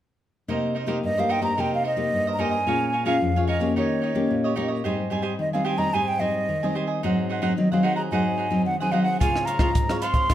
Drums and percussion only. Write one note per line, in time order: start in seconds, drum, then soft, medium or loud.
9.21 kick medium
9.21 closed hi-hat medium
9.36 cross-stick medium
9.47 closed hi-hat soft
9.59 kick medium
9.59 cross-stick medium
9.75 kick medium
9.75 closed hi-hat medium
9.89 cross-stick medium
9.89 closed hi-hat soft
10.02 closed hi-hat soft
10.14 kick medium
10.14 closed hi-hat soft
10.30 kick medium
10.30 cross-stick medium
10.30 closed hi-hat medium